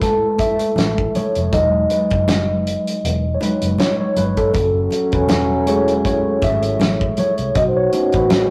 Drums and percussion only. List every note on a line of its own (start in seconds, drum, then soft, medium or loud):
0.02 kick medium
0.02 snare soft
0.02 closed hi-hat medium
0.39 kick medium
0.39 closed hi-hat medium
0.39 muted conga soft
0.59 closed hi-hat medium
0.76 snare loud
0.76 closed hi-hat medium
0.76 high conga medium
0.98 kick medium
1.15 closed hi-hat medium
1.15 high conga medium
1.35 closed hi-hat soft
1.53 kick medium
1.53 closed hi-hat medium
1.53 muted conga soft
1.90 closed hi-hat medium
1.90 muted conga soft
2.10 kick medium
2.10 closed hi-hat soft
2.28 snare loud
2.28 closed hi-hat medium
2.28 high conga medium
2.67 closed hi-hat medium
2.87 closed hi-hat medium
3.05 closed hi-hat medium
3.41 closed hi-hat medium
3.41 muted conga soft
3.62 closed hi-hat medium
3.78 snare medium
3.78 closed hi-hat medium
3.78 high conga medium
4.16 closed hi-hat medium
4.16 high conga medium
4.37 kick medium
4.37 closed hi-hat soft
4.54 kick loud
4.54 closed hi-hat medium
4.54 muted conga soft
4.91 closed hi-hat medium
4.91 muted conga soft
5.12 kick medium
5.12 closed hi-hat soft
5.29 snare loud
5.29 closed hi-hat medium
5.29 high conga medium
5.67 closed hi-hat medium
5.88 closed hi-hat medium
6.05 kick medium
6.05 closed hi-hat medium
6.42 kick medium
6.42 closed hi-hat medium
6.42 muted conga soft
6.63 closed hi-hat medium
6.80 snare loud
6.80 closed hi-hat medium
6.80 high conga medium
7.01 kick medium
7.17 closed hi-hat medium
7.17 high conga medium
7.38 closed hi-hat soft
7.55 kick loud
7.55 closed hi-hat medium
7.55 muted conga soft
7.93 closed hi-hat medium
7.93 muted conga soft
8.12 kick medium
8.12 closed hi-hat soft
8.30 snare loud
8.30 closed hi-hat medium
8.30 high conga medium